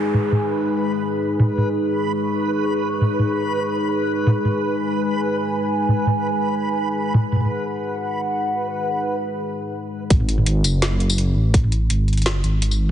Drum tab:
HH |--------------------------------|--------------------------------|--------------------------------|--------------------------------|
TB |--------------------------------|--------------------------------|--------------------------------|--------------------------------|
SD |--------------------------------|--------------------------------|--------------------------------|--------------------------------|
T2 |--o---o-----------------------o-|--o-----------------------------|--o---o-----------------------o-|--o-----------------------------|
BD |--------------------------------|--------------------------------|--------------------------------|--------------------------------|

HH |--------------------------------|--------------------------------|--------------------------------|x---x---x---x---x---x---x-------|
TB |--------------------------------|--------------------------------|--------------------------------|------------x---------x---------|
SD |--------------------------------|--------------------------------|--------------------------------|----------------o---------------|
T2 |--o---o-----------------------o-|--oooo--------------------------|--------------------------------|--o---o-------------------------|
BD |--------------------------------|--------------------------------|--------------------------------|o-------------------------------|

HH |x---x---x---xxxxx---x---x-------|
TB |----------------x---------x-----|
SD |----------------o---------------|
T2 |--o-----------------------------|
BD |o-------------------------------|